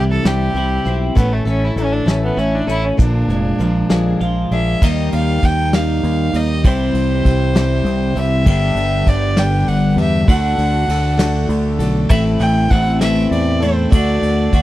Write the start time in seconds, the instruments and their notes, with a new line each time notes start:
Already playing: fingered electric bass C2, clean electric guitar C3 E3 G3 C4 E4, steel-string acoustic guitar G3 C4 E4 G4
0.11 fiddle A4
0.24 fingered electric bass C2, steel-string acoustic guitar C3 G3 C4 E4 G4, fiddle G4, snare, closed hi-hat
0.54 fingered electric bass C2, steel-string acoustic guitar G3 C4 E4 G4, closed hi-hat
0.84 fingered electric bass B1, steel-string acoustic guitar C4 E4 G4, closed hi-hat
1.15 fingered electric bass A1, steel-string acoustic guitar A2 E3 A3 C#4 E4 A4, fiddle B3, kick, closed hi-hat
1.33 fiddle A3
1.45 fingered electric bass A1, steel-string acoustic guitar A3 C#4 E4 A4, fiddle C#4, closed hi-hat
1.64 fiddle E4
1.76 fingered electric bass A1, clean electric guitar E3, steel-string acoustic guitar A3 C#4 E4 A4, fiddle C#4, closed hi-hat
1.92 fiddle D4
2.06 fingered electric bass A1, steel-string acoustic guitar A2 E3 A3 C#4 E4 A4, fiddle C#4, snare, closed hi-hat
2.23 fiddle B3
2.37 fingered electric bass A1, steel-string acoustic guitar A3 C#4 E4 A4, fiddle C#4, closed hi-hat
2.55 fiddle D4
2.67 fingered electric bass A1, steel-string acoustic guitar A3 C#4 E4 A4, fiddle E4, closed hi-hat
2.84 fiddle C#4
2.97 fingered electric bass A#1, steel-string acoustic guitar A#2 D3 F3 A#3 D4 G#4, fiddle D4, kick, closed hi-hat
3.28 fingered electric bass F1, steel-string acoustic guitar F3 A#3 D4 G#4, clean electric guitar G#3, closed hi-hat
3.59 fingered electric bass A#1, steel-string acoustic guitar F3 A#3 D4 G#4, closed hi-hat
3.90 fingered electric bass A#1, steel-string acoustic guitar A#2 D3 F3 A#3 D4 G#4, clean electric guitar G#3, snare, closed hi-hat
4.20 fingered electric bass A#1, steel-string acoustic guitar F3 A#3 D4 G#4, clean electric guitar F4, closed hi-hat
4.51 fingered electric bass A#1, steel-string acoustic guitar F3 A#3 D4 G#4, fiddle E5, closed hi-hat
4.82 fingered electric bass D#2, steel-string acoustic guitar D#3 G3 A#3 D#4 G4, fiddle D#5, kick, crash
5.12 fingered electric bass D#2, fiddle F5, ride
5.42 fingered electric bass D#2, steel-string acoustic guitar G3 A#3 D#4 G4, fiddle G5, kick, ride
5.73 steel-string acoustic guitar D#3 G3 A#3 D#4 G4, fiddle F5, snare, ride
6.03 fingered electric bass D#2, ride
6.33 fingered electric bass D#2, steel-string acoustic guitar A#3 D#4 G4, fiddle D#5, ride
6.64 fingered electric bass C2, steel-string acoustic guitar C3 G3 C4 E4 G4, clean electric guitar E3, fiddle C5, kick, ride
6.94 fingered electric bass C2, ride
7.23 fingered electric bass C2, steel-string acoustic guitar G3 C4 E4 G4, kick, ride
7.55 steel-string acoustic guitar C3 G3 C4 E4 G4, snare, ride
7.84 fingered electric bass C2, ride
8.15 fingered electric bass C2, steel-string acoustic guitar C4 E4 G4, fiddle E5, ride
8.45 fingered electric bass G1, steel-string acoustic guitar G2 D3 G3 B3 D4 G4, string section D4 G4 B4, kick, crash
8.75 fingered electric bass G1, ride
9.05 fingered electric bass G1, steel-string acoustic guitar G3 B3 D4 G4, fiddle D5, kick, ride
9.36 steel-string acoustic guitar G2 D3 G3 B3 D4 G4, fiddle G5, snare, ride
9.67 fingered electric bass G1, fiddle F#5, ride
9.96 fingered electric bass E2, steel-string acoustic guitar B3 D4 G4, fiddle E5, ride
10.00 steel-string acoustic guitar G3
10.26 fingered electric bass D2, steel-string acoustic guitar D3 A3 D4 F#4 A4, string section D4 F#4 A4, fiddle F#5, kick, ride
10.58 fingered electric bass D2, ride
10.88 fingered electric bass D2, steel-string acoustic guitar A3 D4 F#4 A4, ride
11.17 steel-string acoustic guitar D3 A3 D4 F#4 A4, snare, ride
11.49 fingered electric bass D2, ride
11.79 fingered electric bass B1, steel-string acoustic guitar D4 F#4 A4, ride
12.09 fingered electric bass A1, steel-string acoustic guitar A2 E3 A3 C4 E4 A4, fiddle E5, kick, crash
12.40 fingered electric bass A1, fiddle G5, ride
12.70 fingered electric bass A1, clean electric guitar E3, steel-string acoustic guitar A3 C4 E4 A4, fiddle F#5, kick, ride
13.01 steel-string acoustic guitar A2 E3 A3 C4 E4 A4, fiddle E5, snare, ride
13.31 fingered electric bass E2, fiddle D5, ride
13.60 steel-string acoustic guitar A3 C4 E4 A4, fiddle C5, ride
13.90 fingered electric bass D2, steel-string acoustic guitar D3 A3 D4 F#4 A4, fiddle D5, kick, ride
14.22 fingered electric bass D2, ride
14.52 fingered electric bass D2, clean electric guitar D3, steel-string acoustic guitar A3 D4 F#4 A4, kick, ride